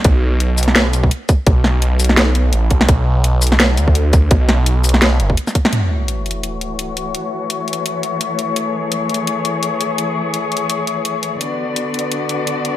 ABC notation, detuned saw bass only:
X:1
M:4/4
L:1/8
Q:"Swing 16ths" 1/4=169
K:F#m
V:1 name="Detuned saw bass" clef=bass
B,,,6 z2 | B,,,6 A,,, B,,, | B,,,4- B,,, D,,3 | B,,,4- B,,, F,,, z2 |
z8 | z8 | z8 | z8 |
z8 |]